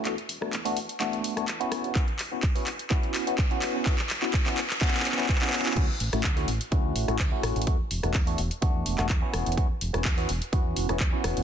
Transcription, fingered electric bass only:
X:1
M:4/4
L:1/16
Q:"Swing 16ths" 1/4=126
K:Bdor
V:1 name="Fingered electric bass" clef=bass
E,, z E,,, E,,, E,,2 E,,, z E,,2 E,,, E,,, E,, z E,,, E,,, | z2 E,,, E,,, z2 E,,, z E,,2 E,,, E,,, z2 E,,, E,,, | z2 E,,, E,,, z2 E,,, z3 E,,, E,,, E,,2 E,,, E,,, | D,, z A,,, A,,, z2 A,,, z D,,2 A,,, A,,, D,, z A,,, A,,, |
z2 E,,, E,,, E,,2 E,,, z E,,2 E,,, E,,, E,, z E,,, E,,, | z2 E,,, E,,, E,,2 E,,, z E,,2 E,,, E,,, z2 E,,, E,,, |]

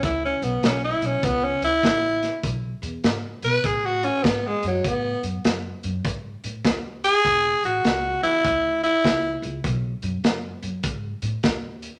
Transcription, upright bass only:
X:1
M:4/4
L:1/8
Q:"Swing" 1/4=100
K:Emix
V:1 name="Upright bass" clef=bass
D,, B,,, B,,, B,,, C,, D,, A,,,2 | B,,, E,, G,, B,, A,,2 G,, F,, | A,, F,, F,, F,, G,, A,, ^D,,2 | E,,, A,,, C,, E,, D,,2 C,, C,, |
B,,, F,, F,, F,, G,, A,, ^D,,2 |]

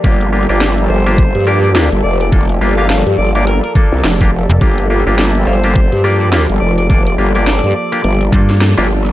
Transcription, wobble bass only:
X:1
M:4/4
L:1/16
Q:"Swing 16ths" 1/4=105
K:Gm
V:1 name="Wobble bass" clef=bass
G,,,3 G,,,3 G,,,3 G,,4 G,,, F,,,2- | F,,,2 G,,,3 G,, G,,,3 z2 C,, F,,,3 z | G,,,3 G,,,3 G,,,3 G,,4 G,,, F,,,2- | F,,,2 G,,,3 G,, z2 G,,,2 z3 G,,,3 |]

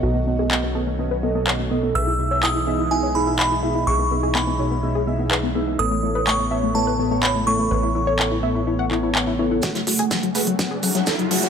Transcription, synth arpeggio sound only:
X:1
M:4/4
L:1/16
Q:1/4=125
K:F#dor
V:1 name="Synth arpeggio sound"
F B, B, G B, B, A B, B, B B, B, c B, B, B, | B E E c E E e E E c E E d E E E | G B, B, G B, B, c B, B, G B, B, B B, B, B, | A A, A, B A, A, e A, A, B A, A, c A, A, A, |
B E E c E E e E E f E E f E E E | F F, F, G F, F, B F, F, G F, F, A F, F, F, |]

